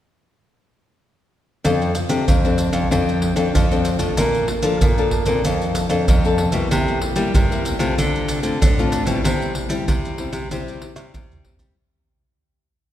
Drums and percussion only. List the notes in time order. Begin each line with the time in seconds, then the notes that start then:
1.65 pandeiro, maracas, surdo
1.82 pandeiro, maracas
1.95 pandeiro, maracas
2.09 pandeiro, maracas
2.28 pandeiro, maracas, surdo
2.45 pandeiro, maracas
2.58 pandeiro, maracas
2.73 pandeiro, maracas
2.92 pandeiro, maracas, surdo
3.09 pandeiro, maracas
3.22 pandeiro
3.36 pandeiro, maracas
3.55 pandeiro, maracas, surdo
3.71 pandeiro, maracas
3.85 pandeiro, maracas
3.99 pandeiro, maracas
4.17 pandeiro, maracas, surdo
4.34 pandeiro, maracas
4.48 pandeiro
4.62 pandeiro, maracas
4.81 pandeiro, maracas, surdo
4.98 pandeiro, maracas
5.11 pandeiro, surdo
5.26 pandeiro, maracas
5.44 pandeiro, maracas, surdo
5.62 pandeiro, maracas
5.75 pandeiro, maracas
5.90 pandeiro, maracas
6.08 pandeiro, maracas, surdo
6.25 pandeiro, maracas
6.38 pandeiro
6.52 pandeiro, maracas
6.71 pandeiro, maracas, surdo
6.88 pandeiro, maracas
7.02 pandeiro
7.16 pandeiro, maracas
7.35 pandeiro, maracas, surdo
7.52 pandeiro, maracas
7.65 pandeiro, maracas
7.80 pandeiro, maracas
7.98 pandeiro, maracas, surdo
8.15 pandeiro, maracas
8.29 pandeiro, maracas
8.43 pandeiro, maracas
8.62 pandeiro, maracas, surdo
8.79 pandeiro, maracas
8.92 pandeiro, maracas
9.07 pandeiro, maracas
9.25 pandeiro, maracas, surdo
9.42 pandeiro, maracas
9.55 pandeiro
9.70 pandeiro, maracas
9.88 pandeiro, maracas, surdo
10.05 pandeiro, maracas
10.18 pandeiro
10.33 pandeiro, maracas
10.51 pandeiro, maracas, surdo
10.68 pandeiro, maracas
10.82 pandeiro
10.96 pandeiro, tamborim, maracas
11.14 pandeiro, maracas, surdo
11.32 surdo, pandeiro, maracas
11.45 pandeiro, surdo
11.59 pandeiro, maracas, surdo